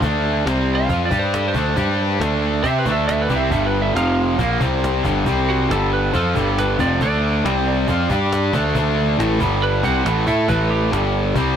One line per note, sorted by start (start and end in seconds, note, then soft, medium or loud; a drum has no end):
0.02 0.43 D2 medium
0.02 0.45 D3 medium
0.02 0.45 A3 loud
0.02 0.46 D4 loud
0.02 cajon bass loud
0.45 0.86 C2 loud
0.45 0.89 C3 loud
0.45 0.89 G3 medium
0.45 0.89 C4 loud
0.45 cajon slap loud
0.75 1.03 F5 medium
0.89 1.10 F2 medium
0.89 1.10 F3 medium
0.89 1.10 C4 loud
0.89 1.11 F4 loud
0.89 cajon bass loud
1.05 1.19 D5 medium
1.11 1.52 G2 loud
1.11 1.54 G3 medium
1.11 1.54 D4 medium
1.11 1.54 G4 medium
1.11 cajon bass loud
1.19 1.34 C5 medium
1.34 1.48 A4 medium
1.34 cajon slap loud
1.48 2.33 C5 medium
1.54 1.75 D2 medium
1.54 1.76 D3 medium
1.54 1.75 A3 loud
1.54 1.75 D4 loud
1.54 cajon bass loud
1.76 2.17 G2 medium
1.76 2.19 G3 medium
1.76 2.20 D4 loud
1.76 2.20 G4 loud
1.76 cajon bass loud
2.20 2.61 D2 medium
2.20 2.63 D3 medium
2.20 2.63 A3 medium
2.20 2.63 D4 loud
2.20 cajon slap loud
2.63 2.84 C3 medium
2.63 2.85 C4 medium
2.63 2.85 G4 loud
2.63 2.85 C5 loud
2.63 2.78 E5 medium
2.63 cajon bass medium
2.79 2.93 B4 medium
2.85 3.27 D2 medium
2.85 3.29 D3 medium
2.85 3.29 A3 medium
2.85 3.29 D4 medium
2.85 cajon bass medium
2.92 3.07 E5 medium
3.08 3.22 E5 medium
3.08 cajon slap loud
3.22 3.36 B4 medium
3.29 3.50 C2 medium
3.29 3.50 C3 medium
3.29 3.50 G3 medium
3.29 3.51 C4 loud
3.29 cajon bass medium
3.36 3.50 E5 medium
3.51 3.92 G1 medium
3.51 3.94 G2 medium
3.51 3.94 D3 loud
3.51 3.94 G3 loud
3.51 3.66 E5 medium
3.51 cajon bass loud
3.66 3.80 B4 medium
3.82 3.95 E5 medium
3.94 4.36 F1 loud
3.94 4.38 F2 medium
3.94 4.38 C3 loud
3.94 4.38 F3 loud
3.94 4.59 F5 medium
3.94 cajon slap loud
4.38 4.59 A#1 medium
4.38 4.60 A#2 medium
4.38 4.60 F3 loud
4.38 4.60 A#3 loud
4.38 cajon bass loud
4.60 5.01 C2 medium
4.60 5.03 C3 medium
4.60 5.03 G3 medium
4.60 5.04 C4 loud
4.60 cajon bass loud
4.84 cajon slap loud
5.03 5.25 G1 medium
5.03 5.25 G2 medium
5.03 5.25 D3 medium
5.03 5.25 G3 loud
5.03 cajon bass loud
5.17 cajon slap soft
5.26 5.67 C2 medium
5.26 5.69 C3 medium
5.26 5.69 G3 medium
5.26 5.69 C4 loud
5.26 cajon bass loud
5.50 5.70 F#4 medium
5.69 6.10 G1 loud
5.69 6.12 G2 medium
5.69 6.13 D3 loud
5.69 6.13 G3 loud
5.69 5.92 A4 medium
5.69 cajon slap loud
5.93 6.14 B4 medium
6.13 6.34 F2 medium
6.13 6.34 F3 medium
6.13 6.34 C4 loud
6.13 6.35 F4 loud
6.13 6.57 A4 medium
6.13 cajon bass medium
6.35 6.76 G1 medium
6.35 6.78 G2 medium
6.35 6.78 D3 loud
6.35 6.78 G3 medium
6.35 cajon bass medium
6.58 6.79 B4 medium
6.58 cajon slap loud
6.79 6.99 F1 medium
6.79 7.00 F2 medium
6.79 7.00 C3 medium
6.79 7.00 F3 loud
6.79 7.01 D5 medium
6.79 cajon bass loud
6.92 cajon slap soft
7.01 7.41 D2 medium
7.01 7.44 D3 medium
7.01 7.44 A3 medium
7.01 7.44 D4 loud
7.01 8.28 D5 loud
7.01 cajon bass loud
7.44 7.85 C2 loud
7.44 7.87 C3 loud
7.44 7.87 G3 loud
7.44 7.87 C4 loud
7.44 cajon slap loud
7.88 8.08 F2 medium
7.88 8.09 F3 medium
7.88 8.09 C4 medium
7.88 8.10 F4 loud
7.88 cajon bass medium
8.10 8.50 G2 medium
8.10 8.52 G3 medium
8.10 8.53 D4 medium
8.10 8.53 G4 medium
8.10 cajon bass medium
8.33 cajon slap loud
8.53 8.74 D2 medium
8.53 8.74 D3 medium
8.53 8.75 A3 medium
8.53 8.75 D4 loud
8.53 cajon bass loud
8.75 9.15 D2 medium
8.75 9.18 D3 medium
8.75 9.18 A3 loud
8.75 9.18 D4 loud
8.75 cajon bass loud
9.18 9.39 A1 medium
9.18 9.39 A2 medium
9.18 9.40 E3 loud
9.18 9.40 A3 loud
9.18 cajon slap loud
9.40 9.81 G1 medium
9.40 9.83 G2 medium
9.40 9.82 D3 medium
9.40 9.82 G3 loud
9.40 cajon bass loud
9.63 9.84 B4 loud
9.83 10.04 C2 medium
9.83 10.04 C3 medium
9.83 10.05 G3 medium
9.83 10.05 C4 loud
9.83 10.26 F#5 medium
9.83 cajon bass medium
10.05 10.25 A1 medium
10.05 10.26 A2 medium
10.05 10.26 E3 medium
10.05 10.25 A3 medium
10.05 cajon slap loud
10.26 10.47 A2 medium
10.26 10.48 A3 medium
10.26 10.48 E4 medium
10.26 10.48 A4 medium
10.26 10.48 E5 medium
10.26 cajon bass medium
10.48 10.89 A1 medium
10.48 10.91 A2 medium
10.48 10.92 E3 loud
10.48 10.92 A3 medium
10.48 10.70 B4 medium
10.48 cajon bass loud
10.71 11.56 G4 loud
10.91 11.33 G1 loud
10.91 11.35 G2 medium
10.91 11.35 D3 loud
10.91 11.34 G3 loud
10.91 cajon slap loud
11.35 11.56 C2 medium
11.35 11.56 C3 medium
11.35 11.56 G3 loud
11.35 11.56 C4 loud
11.35 cajon bass loud